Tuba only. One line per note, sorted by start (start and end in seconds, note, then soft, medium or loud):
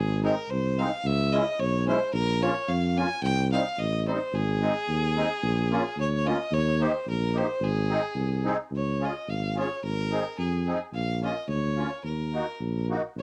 0.00 0.30 G#1 medium
0.50 0.85 C2 medium
1.05 1.40 C#2 medium
1.59 1.94 B1 medium
2.13 2.49 A#1 medium
2.68 3.04 F2 medium
3.23 3.58 C2 medium
3.78 4.13 A1 medium
4.33 4.68 G#1 medium
4.88 5.24 D#2 medium
5.43 5.78 A#1 medium
5.97 6.32 D2 medium
6.51 6.87 D#2 medium
7.06 7.42 A#1 medium
7.60 7.96 G#1 medium
8.15 8.51 C2 medium
8.71 9.07 C#2 medium
9.28 9.64 G#1 medium
9.83 10.19 G#1 medium
10.38 10.74 F2 medium
10.93 11.29 A#1 medium
11.48 11.84 D2 medium
12.04 12.40 D#2 medium
12.60 12.96 A#1 medium
13.16 13.22 A#1 medium